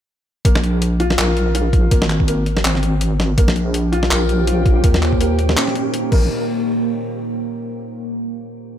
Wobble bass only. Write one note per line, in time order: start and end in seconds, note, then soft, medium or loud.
0.45 1.17 A#1 loud
1.18 1.90 A#1 medium
1.91 2.63 G#1 medium
2.64 3.36 G#1 medium
3.38 4.10 A#1 loud
4.11 4.83 A#1 loud
4.84 5.56 D#2 medium
6.12 6.29 A#1 medium